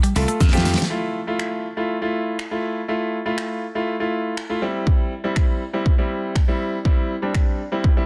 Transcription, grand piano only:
0.16 A3 F4 A4
0.53 A3 F4 G4
0.90 A3 E4 F4
1.27 A3 E4 F4
1.77 A3 E4 F4
2.01 A3 E4 F4
2.51 A3 E4 F4
2.88 A3 E4 F4
3.25 A3 E4 F4
3.75 A3 E4 F4
4.00 A3 E4 F4
4.49 A3 E4 F4
4.62 G3 C4 E4
5.24 G3 C4 E4
5.73 G3 C4 E4
5.98 G3 C4 E4
6.48 G3 C4 E4
6.85 G3 C4 E4
7.22 G3 C4 D4
7.72 G3 C4 E4
7.97 G3 C4 E4

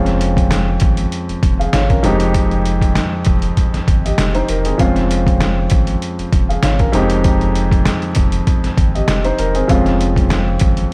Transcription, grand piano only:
Already playing: F2 G#3 C4 C#4 F4
1.59 G#4 F5
1.73 F4 C#5
1.90 C#4 A#4
2.03 F2 G#3 C4 D#4 G4
4.05 G4 D#5
4.35 D#4 C5
4.49 A#4
4.66 C4 G#4
4.78 F2 G#3 C4 C#4 F4
6.49 G#4 F5
6.63 F4 C#5
6.80 C#4 A#4
6.92 F2 G#3 C4 D#4 G4
8.95 G4 D#5
9.24 D#4 C5
9.39 A#4
9.55 C4 G#4
9.68 F2 G#3 C4 C#4 F4

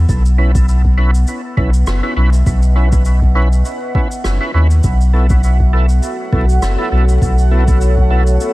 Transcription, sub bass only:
0.09 B1
1.57 B1
1.87 F#1
2.17 B1
2.46 B1
4.24 F#1
4.54 D#2
4.84 B1
6.33 B1
6.62 F#1
6.92 B1
7.22 B1

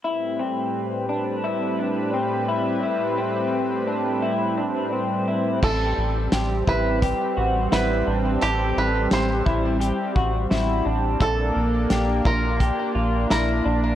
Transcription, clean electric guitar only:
0.04 E4
0.39 C4
1.09 D4
1.44 E4
1.79 D4
2.14 C4
2.48 E4
2.83 E4
3.18 C4
3.88 D4
4.23 E4
4.58 D4
4.93 C4
5.28 E4
5.63 A4
6.33 G4
6.67 E4
7.02 G4
7.37 F#4
7.72 E4
8.06 D4
8.41 A4
9.11 G4
9.46 E4
9.81 G4
10.16 F#4
10.51 E4
10.85 D4
11.20 A4
11.90 G4
12.25 F4
12.60 G4
12.95 F4
13.30 E4
13.65 D4

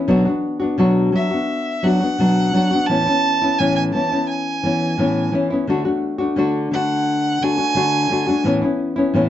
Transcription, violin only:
1.16 E5
1.84 F#5
2.86 A5
3.58 G#5
3.76 G#5
3.93 A5
4.29 G#5
6.74 F#5
7.43 G#5

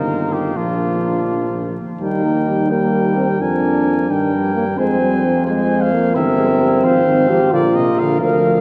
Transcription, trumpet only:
Already playing: A#4
0.33 G4
0.57 F4
2.01 G5
2.72 G5
3.42 G#5
4.11 G5
4.79 G#5
5.47 G#5
5.82 F5
6.16 E5
6.85 F5
7.53 D5
7.76 D#5
7.99 F5
8.21 F5

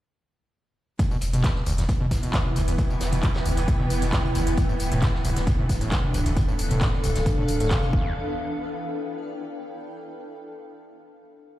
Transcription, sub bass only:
1.22 E1
1.33 E1
1.66 E1
1.78 E1
2.11 E1
2.23 E1
2.56 E1
2.68 E1
3.01 E1
3.13 E1
3.46 E1
3.57 E1
3.90 E1
4.02 E1
4.35 E1
4.47 E1
4.80 D1
4.92 D1
5.25 D1
5.36 D1
5.69 D1
5.81 D1
6.14 D1
6.26 D1
6.59 D1
6.71 D1
7.04 D1
7.16 D1
7.49 D1
7.60 D1
7.93 E1

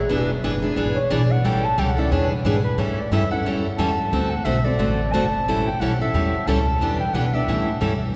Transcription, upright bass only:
0.09 E1
0.43 F#1
0.77 G#1
0.96 muted upright bass stroke
1.10 B1
1.45 A1
1.78 C#2
2.11 E2
2.44 G#2
2.77 A2
3.11 G2
3.44 F#2
3.78 E2
4.12 D2
4.45 B1
4.79 A1
5.13 F#1
5.46 A1
5.80 B1
6.14 E2
6.47 C#2
6.80 E2
7.13 B2
7.47 A2
7.81 G2

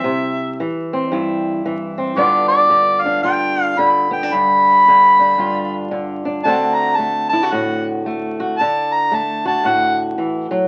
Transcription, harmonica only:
Already playing: E5
2.17 D5
2.48 D5
3.01 F5
3.22 G5
3.63 F5
3.79 B5
4.13 G5
4.33 B5
6.44 A5
6.75 A#5
6.96 A5
7.29 A5
7.52 F#5
8.58 A5
8.94 A#5
9.15 A5
9.47 A5
9.67 F#5

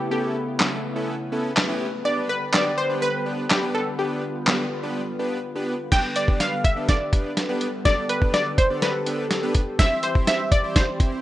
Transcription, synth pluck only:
Already playing: G4
0.11 G4
2.05 D5
2.29 B4
2.53 D5
2.78 C5
3.02 B4
3.50 G4
3.75 A4
3.99 G4
5.92 G5
6.16 D5
6.40 F5
6.64 E5
6.89 D5
7.85 D5
8.09 B4
8.34 D5
8.58 C5
8.82 B4
9.79 E5
10.03 C5
10.28 E5
10.52 D5
10.76 C5

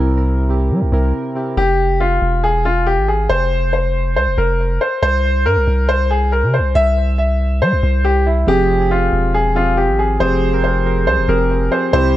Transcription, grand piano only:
1.57 G4
2.00 F4
2.44 G#4
2.65 F4
2.87 G4
3.08 G#4
3.29 C5
3.73 C5
4.16 C5
4.38 A#4
4.81 C5
5.03 C5
5.46 A#4
5.89 C5
6.11 G#4
6.32 A#4
6.54 C5
6.75 E5
7.18 E5
7.62 C5
8.05 G4
8.26 E4
8.48 G4
8.91 F4
9.34 G#4
9.56 F4
9.77 G4
9.99 G#4
10.20 C5
10.64 C5
11.07 C5
11.29 A#4
11.72 C5
11.93 C5

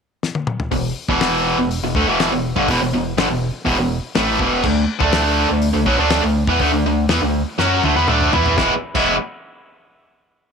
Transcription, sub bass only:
0.72 E1
1.09 E1
1.57 E1
1.81 E1
1.95 D2
2.06 E1
2.31 E1
2.57 G1
2.68 E1
2.82 E1
2.93 E1
3.16 G1
3.30 E1
3.67 E1
3.79 E1
4.17 A1
4.40 E1
4.64 D2
5.01 D2
5.51 D2
5.75 D2
5.86 B1
5.99 D2
6.24 D2
6.47 E2
6.60 D2
6.72 D2
6.84 D2
7.09 E2
7.22 D2
7.58 F#2
7.83 D2
7.96 E2
8.08 D2
8.34 E2
8.58 E1
8.95 E1

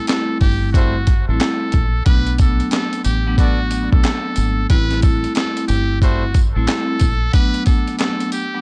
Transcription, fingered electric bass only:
0.41 G1
1.29 A1
1.74 A#1
2.07 B1
3.06 A1
3.93 B1
4.38 G#1
4.70 A1
5.69 G1
6.56 A1
7.02 A#1

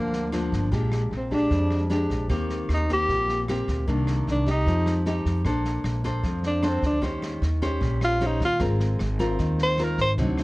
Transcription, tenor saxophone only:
Already playing: A#3
1.17 C4
1.34 D4
2.74 D#4
2.93 G4
4.31 D4
4.50 D#4
6.47 D4
6.68 C4
6.86 D4
8.05 F4
8.26 D#4
8.45 F4
9.63 C5
9.84 A#4
10.01 C5

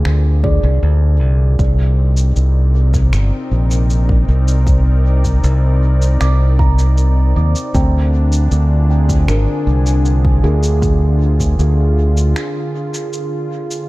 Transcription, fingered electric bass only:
0.05 D2
0.63 C2
0.83 D2
1.21 C2
1.59 C2
2.36 C2
3.13 G1
3.51 A#1
4.28 C2
5.44 C2
6.21 C2
7.36 D#2
7.75 D2
8.51 D2
9.28 G#1
9.67 C2
10.44 D2
11.59 D2

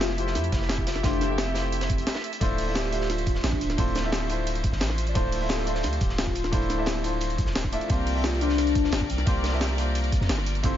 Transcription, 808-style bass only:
Already playing: F1
0.35 F2
0.52 F1
1.04 F1
2.41 D1
3.44 A1
3.61 D1
3.78 D1
4.73 G1
4.81 A1
5.15 D1
5.84 D2
6.01 D1
6.53 D1
7.38 C2
7.47 D1
7.90 C2
8.93 G1
9.10 C2
9.27 C2
10.21 F2
10.30 G1
10.64 F1

